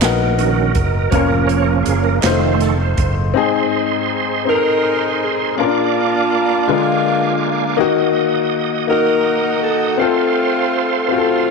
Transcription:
Already playing: D#4 F#4 A#4 D#5
0.00 A#1 B3 D#4 F#4 A#4, snare, clap, closed hi-hat
0.05 F#5
0.38 D#3 C#4 F#4 A#4, closed hi-hat
0.75 F#1 A#4, kick, closed hi-hat
1.10 F1 F3 A#3 C4 C#4 F4 C#5, kick, closed hi-hat
1.15 C#4 A#4
1.28 A#4
1.47 C#5, closed hi-hat
1.64 A#4
1.83 F#1 G#4, closed hi-hat
1.99 C#5
2.04 A#4
2.21 F1 F#3 C4 D#4 C5 D#5, snare, clap, closed hi-hat
2.25 D#3 A3 C4 F4 C5
2.43 C5
2.60 A4, snare, closed hi-hat
2.81 C5
2.98 F#1, kick, closed hi-hat
3.34 G#2 C4 D#4 G#4 C5 D#5 C6
4.45 C4 D#4 A4 A#4
4.55 A#4
5.23 G#4
5.57 A#2 A#3 C#4 D4 F4 A#4 D5 F5 D6
5.61 D4 F4
6.67 D3 G#3 A#3 D4 F4 A#4 F5 G#5 D6
7.77 D#3 A#3 D#4 F#4 D#5 F#5 D#6
8.87 A#3 D#4 F#4 A#4
9.62 A4
9.97 A3 C4 F4 A4 C5 F5 C6
10.02 A4
11.09 A3 C4 F4 F#4
11.18 A4

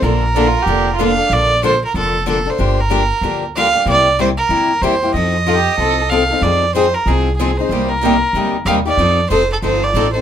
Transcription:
0.02 A#1 D3 F3 A#3 D4 A4 A#4
0.35 D3 F3 A#3 D4 A4
0.47 F4
0.63 F1 G4
0.67 D3 F3 A#3 D4 A4
0.95 D3 F4
1.00 F3 A#3 D4 A4 F5
1.09 D4
1.18 A#3 D4 A4
1.30 A#1 D3 F3 A#3 D4 A4 D5
1.63 D3 F3 A#3 D4 A4 C5
1.85 A#4
1.94 F1 D3 F3 A#3 D4 A4
2.26 D3 F3 A#3 D4 A4
2.46 A#3 D4 A4
2.50 C5
2.58 G1 D3 F3 A#3 D4 G4
2.81 A#4
2.90 D3 F3 A#3 D4 G4
3.21 D2 D3 F3 A#3 D4 G4
3.56 D3 F3 A#3 D4 G4 F5
3.74 A#3 D4 G4
3.86 C2 C3 G3 A#3 E4 G4
3.90 D5
4.19 C3 G3 A#3 E4 G4 C5
4.37 A#4
4.49 D2 C3 G3 A#3 E4 G4
4.82 E2 C3 G3 A#3 E4 G4 C5
5.02 A#3 E4 G4
5.14 F2 F3 C4 D#4 A4 D#5
5.46 F3 C4 D#4 F4 A4
5.56 G4
5.78 C2 F3 C4 D#4 A4
6.10 F3 C4 D#4 A4 F5
6.31 C4 D#4 A4
6.41 F2 F3 C4 D#4 G#4 D5
6.75 F3 C4 D#4 G#4 C5
6.94 A#4
7.06 C2 F3 C4 D#4 G#4
7.37 F3 C4 G#4
7.41 D#4 G#4
7.57 C4 D#4 G#4 C5
7.69 C2 C3 G3 A#3 D#4 G4
7.89 A#4
8.05 C3 G3 A#3 D#4 G4
8.33 D2 C3 G3 A#3 D#4
8.37 G4
8.65 D#2 C3 G3 A#3 D#4 G4 F5
8.85 A#3 D#4 G4 D5
8.98 F2 F3 C4 D#4 A4
9.30 F1 F3 C4 D#4 A4 C5
9.52 A4
9.62 G1 F3 C4 D#4 A4 C5
9.83 D5
9.94 A1 F3 C4 D#4 A4
10.13 C4 D#4 A4 C5

